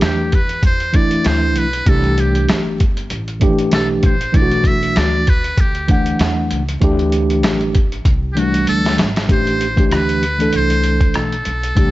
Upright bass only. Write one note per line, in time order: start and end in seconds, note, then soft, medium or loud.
0.02 0.60 E2 medium
0.63 1.22 E2 medium
1.25 1.56 D2 medium
1.56 1.85 B1 medium
1.87 2.46 C2 loud
2.49 3.08 G1 medium
3.11 3.69 A1 medium
3.73 4.02 B1 medium
4.03 4.33 A#1 medium
4.34 4.93 B1 loud
4.97 5.55 D2 medium
5.58 6.17 D2 loud
6.20 6.49 E2 medium
6.51 6.80 C#2 medium
6.82 7.44 D2 loud
7.44 8.03 A1 medium
8.05 8.64 C2 medium
8.68 8.97 D2 loud
8.98 9.28 G#1 medium
9.29 9.91 A1 loud
9.91 10.50 D2 medium
10.53 11.12 C2 medium
11.15 11.44 B1 medium
11.46 11.76 B1 medium
11.77 11.91 C2 loud